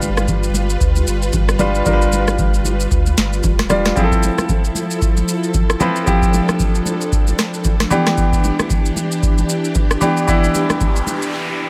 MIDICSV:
0, 0, Header, 1, 6, 480
1, 0, Start_track
1, 0, Tempo, 526316
1, 1696, Time_signature, 4, 2, 24, 8
1, 10665, End_track
2, 0, Start_track
2, 0, Title_t, "String machine"
2, 0, Program_c, 0, 50
2, 0, Note_on_c, 0, 55, 76
2, 0, Note_on_c, 0, 65, 67
2, 0, Note_on_c, 0, 71, 85
2, 3580, Note_off_c, 0, 55, 0
2, 3580, Note_off_c, 0, 65, 0
2, 3580, Note_off_c, 0, 71, 0
2, 3616, Note_on_c, 0, 53, 75
2, 3616, Note_on_c, 0, 69, 86
2, 3617, Note_on_c, 0, 64, 73
2, 5517, Note_off_c, 0, 64, 0
2, 5537, Note_on_c, 0, 62, 72
2, 7180, Note_off_c, 0, 53, 0
2, 7180, Note_off_c, 0, 69, 0
2, 7216, Note_on_c, 0, 52, 73
2, 7216, Note_on_c, 0, 67, 82
2, 10665, Note_off_c, 0, 52, 0
2, 10665, Note_off_c, 0, 62, 0
2, 10665, Note_off_c, 0, 67, 0
2, 10665, End_track
3, 0, Start_track
3, 0, Title_t, "Grand piano"
3, 0, Program_c, 1, 0
3, 0, Control_c, 1, 64, 127
3, 0, Note_on_c, 1, 55, 88
3, 0, Note_on_c, 1, 62, 83
3, 0, Note_on_c, 1, 65, 82
3, 0, Note_on_c, 1, 71, 100
3, 308, Note_off_c, 1, 55, 0
3, 310, Note_off_c, 1, 62, 0
3, 313, Note_off_c, 1, 65, 0
3, 345, Note_off_c, 1, 71, 0
3, 1449, Note_on_c, 1, 55, 84
3, 1454, Note_on_c, 1, 62, 76
3, 1459, Note_on_c, 1, 65, 80
3, 1465, Note_on_c, 1, 71, 93
3, 1652, Note_off_c, 1, 55, 0
3, 1655, Note_off_c, 1, 62, 0
3, 1657, Note_off_c, 1, 65, 0
3, 1660, Note_off_c, 1, 71, 0
3, 1689, Note_on_c, 1, 55, 84
3, 1694, Note_on_c, 1, 62, 81
3, 1700, Note_on_c, 1, 65, 74
3, 1705, Note_on_c, 1, 70, 72
3, 1763, Note_on_c, 1, 71, 92
3, 1767, Note_off_c, 1, 70, 0
3, 2468, Note_off_c, 1, 55, 0
3, 2471, Note_off_c, 1, 62, 0
3, 2474, Note_off_c, 1, 65, 0
3, 2505, Note_off_c, 1, 71, 0
3, 3368, Note_on_c, 1, 55, 83
3, 3374, Note_on_c, 1, 62, 76
3, 3379, Note_on_c, 1, 65, 78
3, 3385, Note_on_c, 1, 74, 95
3, 3572, Note_off_c, 1, 55, 0
3, 3575, Note_off_c, 1, 62, 0
3, 3577, Note_off_c, 1, 65, 0
3, 3580, Note_off_c, 1, 74, 0
3, 3608, Note_on_c, 1, 53, 83
3, 3614, Note_on_c, 1, 60, 77
3, 3619, Note_on_c, 1, 64, 77
3, 3624, Note_on_c, 1, 68, 70
3, 3628, Control_c, 1, 64, 0
3, 3682, Note_on_c, 1, 69, 91
3, 3687, Note_off_c, 1, 68, 0
3, 3761, Control_c, 1, 64, 127
3, 4388, Note_off_c, 1, 53, 0
3, 4390, Note_off_c, 1, 60, 0
3, 4393, Note_off_c, 1, 64, 0
3, 4425, Note_off_c, 1, 69, 0
3, 5288, Note_on_c, 1, 53, 84
3, 5294, Note_on_c, 1, 60, 77
3, 5299, Note_on_c, 1, 64, 75
3, 5304, Note_on_c, 1, 71, 90
3, 5492, Note_off_c, 1, 53, 0
3, 5495, Note_off_c, 1, 60, 0
3, 5497, Note_off_c, 1, 64, 0
3, 5500, Note_off_c, 1, 71, 0
3, 5528, Note_on_c, 1, 53, 82
3, 5533, Note_on_c, 1, 60, 75
3, 5539, Note_on_c, 1, 64, 79
3, 5544, Note_on_c, 1, 67, 90
3, 6308, Note_off_c, 1, 53, 0
3, 6310, Note_off_c, 1, 60, 0
3, 6313, Note_off_c, 1, 64, 0
3, 6316, Note_off_c, 1, 67, 0
3, 7208, Note_on_c, 1, 52, 86
3, 7213, Note_on_c, 1, 59, 84
3, 7219, Note_on_c, 1, 62, 79
3, 7224, Note_on_c, 1, 67, 100
3, 7228, Control_c, 1, 64, 0
3, 7393, Control_c, 1, 64, 127
3, 7988, Note_off_c, 1, 52, 0
3, 7990, Note_off_c, 1, 59, 0
3, 7993, Note_off_c, 1, 62, 0
3, 7996, Note_off_c, 1, 67, 0
3, 9128, Note_on_c, 1, 52, 86
3, 9133, Note_on_c, 1, 59, 77
3, 9139, Note_on_c, 1, 62, 79
3, 9144, Note_on_c, 1, 67, 95
3, 9332, Note_off_c, 1, 52, 0
3, 9334, Note_off_c, 1, 59, 0
3, 9337, Note_off_c, 1, 62, 0
3, 9340, Note_off_c, 1, 67, 0
3, 9368, Note_on_c, 1, 52, 89
3, 9374, Note_on_c, 1, 59, 79
3, 9379, Note_on_c, 1, 62, 74
3, 9384, Note_on_c, 1, 64, 94
3, 10148, Note_off_c, 1, 52, 0
3, 10150, Note_off_c, 1, 59, 0
3, 10153, Note_off_c, 1, 62, 0
3, 10156, Note_off_c, 1, 64, 0
3, 10665, End_track
4, 0, Start_track
4, 0, Title_t, "Sub bass"
4, 0, Program_c, 2, 38
4, 0, Note_on_c, 2, 31, 98
4, 700, Note_off_c, 2, 31, 0
4, 737, Note_on_c, 2, 38, 111
4, 953, Note_off_c, 2, 38, 0
4, 976, Note_on_c, 2, 31, 91
4, 1193, Note_off_c, 2, 31, 0
4, 1217, Note_on_c, 2, 31, 96
4, 1660, Note_off_c, 2, 31, 0
4, 1696, Note_on_c, 2, 31, 103
4, 2620, Note_off_c, 2, 31, 0
4, 2657, Note_on_c, 2, 38, 102
4, 2873, Note_off_c, 2, 38, 0
4, 2896, Note_on_c, 2, 31, 89
4, 3113, Note_off_c, 2, 31, 0
4, 3137, Note_on_c, 2, 28, 88
4, 3580, Note_off_c, 2, 28, 0
4, 10665, End_track
5, 0, Start_track
5, 0, Title_t, "Noise sweep"
5, 0, Program_c, 3, 103
5, 9376, Note_on_c, 3, 60, 83
5, 10665, Note_off_c, 3, 60, 0
5, 10665, End_track
6, 0, Start_track
6, 0, Title_t, "Drums"
6, 17, Note_on_c, 9, 82, 92
6, 24, Note_on_c, 9, 63, 66
6, 109, Note_off_c, 9, 82, 0
6, 115, Note_off_c, 9, 63, 0
6, 157, Note_on_c, 9, 82, 52
6, 158, Note_on_c, 9, 37, 86
6, 158, Note_on_c, 9, 63, 73
6, 249, Note_off_c, 9, 37, 0
6, 249, Note_off_c, 9, 63, 0
6, 249, Note_off_c, 9, 82, 0
6, 255, Note_on_c, 9, 36, 84
6, 255, Note_on_c, 9, 82, 74
6, 264, Note_on_c, 9, 64, 65
6, 346, Note_off_c, 9, 36, 0
6, 346, Note_off_c, 9, 82, 0
6, 355, Note_off_c, 9, 64, 0
6, 396, Note_on_c, 9, 82, 57
6, 487, Note_off_c, 9, 82, 0
6, 493, Note_on_c, 9, 63, 69
6, 500, Note_on_c, 9, 82, 87
6, 584, Note_off_c, 9, 63, 0
6, 591, Note_off_c, 9, 82, 0
6, 635, Note_on_c, 9, 82, 60
6, 727, Note_off_c, 9, 82, 0
6, 737, Note_on_c, 9, 36, 117
6, 738, Note_on_c, 9, 82, 71
6, 828, Note_off_c, 9, 36, 0
6, 829, Note_off_c, 9, 82, 0
6, 874, Note_on_c, 9, 82, 55
6, 883, Note_on_c, 9, 63, 45
6, 965, Note_off_c, 9, 82, 0
6, 974, Note_off_c, 9, 63, 0
6, 978, Note_on_c, 9, 82, 96
6, 1070, Note_off_c, 9, 82, 0
6, 1116, Note_on_c, 9, 82, 49
6, 1208, Note_off_c, 9, 82, 0
6, 1212, Note_on_c, 9, 82, 76
6, 1214, Note_on_c, 9, 64, 72
6, 1217, Note_on_c, 9, 36, 97
6, 1303, Note_off_c, 9, 82, 0
6, 1306, Note_off_c, 9, 64, 0
6, 1308, Note_off_c, 9, 36, 0
6, 1356, Note_on_c, 9, 37, 91
6, 1358, Note_on_c, 9, 82, 57
6, 1447, Note_off_c, 9, 37, 0
6, 1449, Note_off_c, 9, 82, 0
6, 1452, Note_on_c, 9, 82, 84
6, 1453, Note_on_c, 9, 63, 76
6, 1453, Note_on_c, 9, 64, 75
6, 1543, Note_off_c, 9, 82, 0
6, 1544, Note_off_c, 9, 63, 0
6, 1544, Note_off_c, 9, 64, 0
6, 1595, Note_on_c, 9, 82, 45
6, 1686, Note_off_c, 9, 82, 0
6, 1695, Note_on_c, 9, 82, 72
6, 1696, Note_on_c, 9, 36, 103
6, 1702, Note_on_c, 9, 64, 61
6, 1786, Note_off_c, 9, 82, 0
6, 1787, Note_off_c, 9, 36, 0
6, 1794, Note_off_c, 9, 64, 0
6, 1839, Note_on_c, 9, 82, 54
6, 1931, Note_off_c, 9, 82, 0
6, 1937, Note_on_c, 9, 82, 90
6, 1943, Note_on_c, 9, 63, 65
6, 2028, Note_off_c, 9, 82, 0
6, 2035, Note_off_c, 9, 63, 0
6, 2077, Note_on_c, 9, 63, 77
6, 2077, Note_on_c, 9, 82, 53
6, 2078, Note_on_c, 9, 37, 86
6, 2168, Note_off_c, 9, 82, 0
6, 2169, Note_off_c, 9, 37, 0
6, 2169, Note_off_c, 9, 63, 0
6, 2175, Note_on_c, 9, 36, 89
6, 2175, Note_on_c, 9, 82, 72
6, 2184, Note_on_c, 9, 64, 65
6, 2266, Note_off_c, 9, 36, 0
6, 2266, Note_off_c, 9, 82, 0
6, 2276, Note_off_c, 9, 64, 0
6, 2316, Note_on_c, 9, 82, 55
6, 2407, Note_off_c, 9, 82, 0
6, 2412, Note_on_c, 9, 63, 64
6, 2419, Note_on_c, 9, 82, 90
6, 2503, Note_off_c, 9, 63, 0
6, 2511, Note_off_c, 9, 82, 0
6, 2555, Note_on_c, 9, 82, 62
6, 2646, Note_off_c, 9, 82, 0
6, 2656, Note_on_c, 9, 36, 109
6, 2658, Note_on_c, 9, 82, 68
6, 2748, Note_off_c, 9, 36, 0
6, 2749, Note_off_c, 9, 82, 0
6, 2794, Note_on_c, 9, 82, 53
6, 2803, Note_on_c, 9, 63, 45
6, 2885, Note_off_c, 9, 82, 0
6, 2894, Note_off_c, 9, 63, 0
6, 2898, Note_on_c, 9, 38, 69
6, 2898, Note_on_c, 9, 82, 94
6, 2989, Note_off_c, 9, 38, 0
6, 2989, Note_off_c, 9, 82, 0
6, 3036, Note_on_c, 9, 82, 50
6, 3128, Note_off_c, 9, 82, 0
6, 3131, Note_on_c, 9, 82, 75
6, 3135, Note_on_c, 9, 64, 70
6, 3137, Note_on_c, 9, 36, 98
6, 3222, Note_off_c, 9, 82, 0
6, 3226, Note_off_c, 9, 64, 0
6, 3228, Note_off_c, 9, 36, 0
6, 3276, Note_on_c, 9, 37, 93
6, 3276, Note_on_c, 9, 38, 66
6, 3279, Note_on_c, 9, 82, 54
6, 3367, Note_off_c, 9, 37, 0
6, 3367, Note_off_c, 9, 38, 0
6, 3370, Note_off_c, 9, 82, 0
6, 3372, Note_on_c, 9, 82, 83
6, 3374, Note_on_c, 9, 63, 76
6, 3374, Note_on_c, 9, 64, 75
6, 3375, Note_on_c, 9, 37, 98
6, 3464, Note_off_c, 9, 82, 0
6, 3465, Note_off_c, 9, 63, 0
6, 3465, Note_off_c, 9, 64, 0
6, 3466, Note_off_c, 9, 37, 0
6, 3515, Note_on_c, 9, 82, 45
6, 3516, Note_on_c, 9, 37, 84
6, 3516, Note_on_c, 9, 38, 62
6, 3607, Note_off_c, 9, 37, 0
6, 3607, Note_off_c, 9, 38, 0
6, 3607, Note_off_c, 9, 82, 0
6, 3616, Note_on_c, 9, 36, 104
6, 3616, Note_on_c, 9, 82, 71
6, 3624, Note_on_c, 9, 64, 60
6, 3707, Note_off_c, 9, 36, 0
6, 3707, Note_off_c, 9, 82, 0
6, 3715, Note_off_c, 9, 64, 0
6, 3753, Note_on_c, 9, 36, 96
6, 3760, Note_on_c, 9, 82, 55
6, 3844, Note_off_c, 9, 36, 0
6, 3851, Note_off_c, 9, 82, 0
6, 3857, Note_on_c, 9, 82, 96
6, 3864, Note_on_c, 9, 63, 66
6, 3948, Note_off_c, 9, 82, 0
6, 3955, Note_off_c, 9, 63, 0
6, 3997, Note_on_c, 9, 82, 50
6, 3998, Note_on_c, 9, 37, 81
6, 3998, Note_on_c, 9, 63, 77
6, 4088, Note_off_c, 9, 82, 0
6, 4089, Note_off_c, 9, 37, 0
6, 4090, Note_off_c, 9, 63, 0
6, 4095, Note_on_c, 9, 36, 86
6, 4095, Note_on_c, 9, 82, 74
6, 4105, Note_on_c, 9, 64, 67
6, 4186, Note_off_c, 9, 82, 0
6, 4187, Note_off_c, 9, 36, 0
6, 4196, Note_off_c, 9, 64, 0
6, 4237, Note_on_c, 9, 82, 56
6, 4328, Note_off_c, 9, 82, 0
6, 4332, Note_on_c, 9, 63, 68
6, 4339, Note_on_c, 9, 82, 90
6, 4423, Note_off_c, 9, 63, 0
6, 4430, Note_off_c, 9, 82, 0
6, 4475, Note_on_c, 9, 82, 59
6, 4566, Note_off_c, 9, 82, 0
6, 4577, Note_on_c, 9, 36, 111
6, 4578, Note_on_c, 9, 82, 71
6, 4668, Note_off_c, 9, 36, 0
6, 4669, Note_off_c, 9, 82, 0
6, 4714, Note_on_c, 9, 82, 57
6, 4723, Note_on_c, 9, 63, 44
6, 4805, Note_off_c, 9, 82, 0
6, 4814, Note_off_c, 9, 63, 0
6, 4818, Note_on_c, 9, 82, 99
6, 4909, Note_off_c, 9, 82, 0
6, 4957, Note_on_c, 9, 82, 48
6, 5048, Note_off_c, 9, 82, 0
6, 5051, Note_on_c, 9, 82, 73
6, 5055, Note_on_c, 9, 64, 71
6, 5057, Note_on_c, 9, 36, 95
6, 5143, Note_off_c, 9, 82, 0
6, 5146, Note_off_c, 9, 64, 0
6, 5148, Note_off_c, 9, 36, 0
6, 5196, Note_on_c, 9, 37, 98
6, 5199, Note_on_c, 9, 82, 54
6, 5287, Note_off_c, 9, 37, 0
6, 5290, Note_off_c, 9, 82, 0
6, 5292, Note_on_c, 9, 82, 84
6, 5294, Note_on_c, 9, 63, 78
6, 5294, Note_on_c, 9, 64, 75
6, 5384, Note_off_c, 9, 82, 0
6, 5385, Note_off_c, 9, 63, 0
6, 5385, Note_off_c, 9, 64, 0
6, 5436, Note_on_c, 9, 82, 45
6, 5527, Note_off_c, 9, 82, 0
6, 5536, Note_on_c, 9, 36, 103
6, 5536, Note_on_c, 9, 82, 69
6, 5543, Note_on_c, 9, 64, 61
6, 5627, Note_off_c, 9, 36, 0
6, 5627, Note_off_c, 9, 82, 0
6, 5634, Note_off_c, 9, 64, 0
6, 5673, Note_on_c, 9, 36, 96
6, 5679, Note_on_c, 9, 82, 57
6, 5764, Note_off_c, 9, 36, 0
6, 5770, Note_off_c, 9, 82, 0
6, 5777, Note_on_c, 9, 82, 98
6, 5783, Note_on_c, 9, 63, 64
6, 5868, Note_off_c, 9, 82, 0
6, 5874, Note_off_c, 9, 63, 0
6, 5917, Note_on_c, 9, 63, 78
6, 5917, Note_on_c, 9, 82, 53
6, 5918, Note_on_c, 9, 37, 85
6, 6008, Note_off_c, 9, 63, 0
6, 6008, Note_off_c, 9, 82, 0
6, 6009, Note_off_c, 9, 37, 0
6, 6015, Note_on_c, 9, 36, 86
6, 6015, Note_on_c, 9, 82, 72
6, 6024, Note_on_c, 9, 64, 65
6, 6106, Note_off_c, 9, 36, 0
6, 6106, Note_off_c, 9, 82, 0
6, 6115, Note_off_c, 9, 64, 0
6, 6156, Note_on_c, 9, 82, 56
6, 6247, Note_off_c, 9, 82, 0
6, 6252, Note_on_c, 9, 63, 65
6, 6259, Note_on_c, 9, 82, 91
6, 6343, Note_off_c, 9, 63, 0
6, 6350, Note_off_c, 9, 82, 0
6, 6395, Note_on_c, 9, 82, 61
6, 6486, Note_off_c, 9, 82, 0
6, 6496, Note_on_c, 9, 36, 114
6, 6498, Note_on_c, 9, 82, 70
6, 6587, Note_off_c, 9, 36, 0
6, 6589, Note_off_c, 9, 82, 0
6, 6634, Note_on_c, 9, 82, 58
6, 6642, Note_on_c, 9, 63, 44
6, 6725, Note_off_c, 9, 82, 0
6, 6734, Note_off_c, 9, 63, 0
6, 6738, Note_on_c, 9, 37, 97
6, 6738, Note_on_c, 9, 38, 68
6, 6738, Note_on_c, 9, 82, 103
6, 6829, Note_off_c, 9, 37, 0
6, 6829, Note_off_c, 9, 38, 0
6, 6830, Note_off_c, 9, 82, 0
6, 6876, Note_on_c, 9, 82, 48
6, 6967, Note_off_c, 9, 82, 0
6, 6971, Note_on_c, 9, 82, 77
6, 6974, Note_on_c, 9, 64, 75
6, 6977, Note_on_c, 9, 36, 94
6, 7062, Note_off_c, 9, 82, 0
6, 7066, Note_off_c, 9, 64, 0
6, 7068, Note_off_c, 9, 36, 0
6, 7116, Note_on_c, 9, 37, 94
6, 7116, Note_on_c, 9, 38, 66
6, 7118, Note_on_c, 9, 82, 56
6, 7207, Note_off_c, 9, 37, 0
6, 7207, Note_off_c, 9, 38, 0
6, 7210, Note_off_c, 9, 82, 0
6, 7212, Note_on_c, 9, 82, 88
6, 7213, Note_on_c, 9, 63, 77
6, 7213, Note_on_c, 9, 64, 76
6, 7303, Note_off_c, 9, 82, 0
6, 7305, Note_off_c, 9, 63, 0
6, 7305, Note_off_c, 9, 64, 0
6, 7356, Note_on_c, 9, 82, 47
6, 7357, Note_on_c, 9, 37, 86
6, 7357, Note_on_c, 9, 38, 62
6, 7447, Note_off_c, 9, 82, 0
6, 7448, Note_off_c, 9, 37, 0
6, 7448, Note_off_c, 9, 38, 0
6, 7456, Note_on_c, 9, 36, 102
6, 7456, Note_on_c, 9, 82, 70
6, 7463, Note_on_c, 9, 64, 61
6, 7547, Note_off_c, 9, 36, 0
6, 7547, Note_off_c, 9, 82, 0
6, 7554, Note_off_c, 9, 64, 0
6, 7593, Note_on_c, 9, 36, 97
6, 7600, Note_on_c, 9, 82, 57
6, 7684, Note_off_c, 9, 36, 0
6, 7691, Note_off_c, 9, 82, 0
6, 7698, Note_on_c, 9, 82, 92
6, 7704, Note_on_c, 9, 63, 64
6, 7789, Note_off_c, 9, 82, 0
6, 7795, Note_off_c, 9, 63, 0
6, 7837, Note_on_c, 9, 82, 51
6, 7838, Note_on_c, 9, 37, 86
6, 7838, Note_on_c, 9, 63, 79
6, 7928, Note_off_c, 9, 82, 0
6, 7929, Note_off_c, 9, 37, 0
6, 7929, Note_off_c, 9, 63, 0
6, 7935, Note_on_c, 9, 36, 89
6, 7935, Note_on_c, 9, 82, 71
6, 7945, Note_on_c, 9, 64, 67
6, 8026, Note_off_c, 9, 36, 0
6, 8026, Note_off_c, 9, 82, 0
6, 8036, Note_off_c, 9, 64, 0
6, 8076, Note_on_c, 9, 82, 56
6, 8168, Note_off_c, 9, 82, 0
6, 8172, Note_on_c, 9, 63, 69
6, 8180, Note_on_c, 9, 82, 88
6, 8264, Note_off_c, 9, 63, 0
6, 8271, Note_off_c, 9, 82, 0
6, 8315, Note_on_c, 9, 82, 62
6, 8407, Note_off_c, 9, 82, 0
6, 8417, Note_on_c, 9, 36, 118
6, 8418, Note_on_c, 9, 82, 69
6, 8508, Note_off_c, 9, 36, 0
6, 8509, Note_off_c, 9, 82, 0
6, 8554, Note_on_c, 9, 82, 58
6, 8563, Note_on_c, 9, 63, 46
6, 8645, Note_off_c, 9, 82, 0
6, 8654, Note_off_c, 9, 63, 0
6, 8658, Note_on_c, 9, 82, 102
6, 8750, Note_off_c, 9, 82, 0
6, 8796, Note_on_c, 9, 82, 48
6, 8887, Note_off_c, 9, 82, 0
6, 8891, Note_on_c, 9, 82, 75
6, 8895, Note_on_c, 9, 64, 73
6, 8897, Note_on_c, 9, 36, 93
6, 8982, Note_off_c, 9, 82, 0
6, 8986, Note_off_c, 9, 64, 0
6, 8988, Note_off_c, 9, 36, 0
6, 9036, Note_on_c, 9, 37, 93
6, 9038, Note_on_c, 9, 82, 55
6, 9127, Note_off_c, 9, 37, 0
6, 9130, Note_off_c, 9, 82, 0
6, 9132, Note_on_c, 9, 82, 84
6, 9134, Note_on_c, 9, 63, 78
6, 9134, Note_on_c, 9, 64, 74
6, 9223, Note_off_c, 9, 82, 0
6, 9225, Note_off_c, 9, 63, 0
6, 9225, Note_off_c, 9, 64, 0
6, 9275, Note_on_c, 9, 82, 46
6, 9367, Note_off_c, 9, 82, 0
6, 9376, Note_on_c, 9, 36, 108
6, 9376, Note_on_c, 9, 82, 70
6, 9383, Note_on_c, 9, 64, 60
6, 9467, Note_off_c, 9, 36, 0
6, 9467, Note_off_c, 9, 82, 0
6, 9474, Note_off_c, 9, 64, 0
6, 9520, Note_on_c, 9, 82, 57
6, 9611, Note_off_c, 9, 82, 0
6, 9617, Note_on_c, 9, 82, 96
6, 9623, Note_on_c, 9, 63, 64
6, 9708, Note_off_c, 9, 82, 0
6, 9715, Note_off_c, 9, 63, 0
6, 9757, Note_on_c, 9, 63, 76
6, 9757, Note_on_c, 9, 82, 52
6, 9758, Note_on_c, 9, 37, 85
6, 9848, Note_off_c, 9, 82, 0
6, 9849, Note_off_c, 9, 37, 0
6, 9849, Note_off_c, 9, 63, 0
6, 9855, Note_on_c, 9, 36, 86
6, 9855, Note_on_c, 9, 82, 70
6, 9864, Note_on_c, 9, 64, 67
6, 9946, Note_off_c, 9, 36, 0
6, 9946, Note_off_c, 9, 82, 0
6, 9956, Note_off_c, 9, 64, 0
6, 9996, Note_on_c, 9, 82, 57
6, 10087, Note_off_c, 9, 82, 0
6, 10092, Note_on_c, 9, 63, 65
6, 10099, Note_on_c, 9, 82, 90
6, 10184, Note_off_c, 9, 63, 0
6, 10191, Note_off_c, 9, 82, 0
6, 10235, Note_on_c, 9, 82, 62
6, 10326, Note_off_c, 9, 82, 0
6, 10665, End_track
0, 0, End_of_file